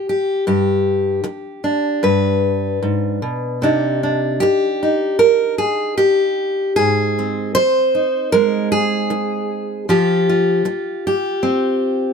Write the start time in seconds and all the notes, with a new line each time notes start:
0.09 G4
0.47 G2 G4
1.24 muted steel-string acoustic guitar stroke
1.64 D4
2.03 G2 B4
2.82 G#2
3.22 B2
3.62 C3 D4 D#4
4.03 D4
4.40 G4, muted steel-string acoustic guitar stroke
4.83 D#4
5.19 A#4
5.58 G#4
5.98 G4, muted steel-string acoustic guitar stroke
6.76 G#2 G#4
7.19 C4
7.55 C5, muted steel-string acoustic guitar stroke
7.95 D#4
8.32 G#3 A#4
8.72 G#4
9.10 muted steel-string acoustic guitar stroke
9.89 F3 F4 G4
10.29 F4
10.65 muted steel-string acoustic guitar stroke
11.07 G4
11.43 C4